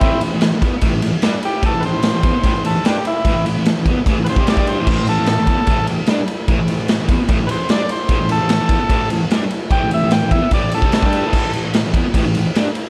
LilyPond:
<<
  \new Staff \with { instrumentName = "Transistor combo organ" } { \time 4/4 \key a \minor \tempo 4 = 148 <c' e'>8 r2. g'8 | a'8 <b' c''>2 a'8 g'8 e'8~ | e'8 r2 <b' c''>8 d''8 c''8~ | c''8 a'2 r4. |
r2 r8 <b' c''>8 d''8 c''8~ | c''8 a'2 r4. | g''8 e''8 g''8 e''8 d''8 a'4.~ | a'8 r2. r8 | }
  \new Staff \with { instrumentName = "Distorted electric guitar" } { \clef bass \time 4/4 \key a \minor <a, e>16 <a, e>16 <a, e>16 <a, e>8 <a, e>16 <e b>16 r16 <a, e>16 <a, e>16 <a, e>16 r16 <g d'>16 r8. | <a, e>16 <a, e>16 <a, e>16 <a, e>8 <a, e>16 <e b>16 r16 <a, e>16 <a, e>16 <a, e>16 r16 <g d'>16 r8. | <a, e>16 <a, e>16 <a, e>16 <a, e>8 <a, e>16 <e b>16 r16 <a, e>16 <a, e>16 <a, e>16 <c g c'>8 <g d' g'>8 <a, e>16 | <a, e>16 <a, e>16 <a, e>16 <a, e>8 <a, e>16 <e b>16 r16 <a, e>16 <a, e>16 <a, e>16 r16 <g d'>16 r8. |
<a, e>16 <a, e>16 <a, e>16 <a, e>8 <a, e>16 <e b>16 r16 <a, e>16 <a, e>16 <a, e>16 r16 <g d'>16 r8. | <a, e>16 <a, e>16 <a, e>16 <a, e>8 <a, e>16 <e b>16 r16 <a, e>16 <a, e>16 <a, e>16 r16 <g d'>16 r8. | <a, e>16 <a, e>16 <a, e>16 <a, e>8 <a, e>16 <e b>16 r16 <a, e>16 <a, e>16 <a, e>16 <c g c'>8 <g d' g'>8 <a, e>16 | <a, e>16 <a, e>16 <a, e>16 <a, e>8 <a, e>16 <e b>16 r16 <a, e>16 <a, e>16 <a, e>16 r16 <g d'>16 r8. | }
  \new DrumStaff \with { instrumentName = "Drums" } \drummode { \time 4/4 <bd cymr>8 cymr8 <cymr sn>8 <bd cymr>8 <bd cymr>8 cymr8 <cymr sn>8 cymr8 | <bd cymr>8 cymr8 <cymr sn>8 <bd cymr>8 <bd cymr>8 cymr8 <cymr sn>8 cymr8 | <bd cymr>8 cymr8 <cymr sn>8 <bd cymr>8 <bd cymr>8 cymr16 bd16 <cymr sn>16 bd16 cymr8 | <cymc bd>8 cymr8 <cymr sn>8 <bd cymr>8 <bd cymr>8 cymr8 <cymr sn>8 cymr8 |
<bd cymr>8 cymr8 <cymr sn>8 <bd cymr>8 <bd cymr>8 cymr8 <cymr sn>8 cymr8 | <bd cymr>8 cymr8 <cymr sn>8 <bd cymr>8 <bd cymr>8 cymr8 <cymr sn>8 cymr8 | <bd cymr>8 cymr8 <cymr sn>8 <bd cymr>8 <bd cymr>8 cymr16 bd16 <cymr sn>16 bd16 cymr8 | <cymc bd>8 cymr8 <cymr sn>8 <bd cymr>8 <bd cymr>8 cymr8 <cymr sn>8 cymr8 | }
>>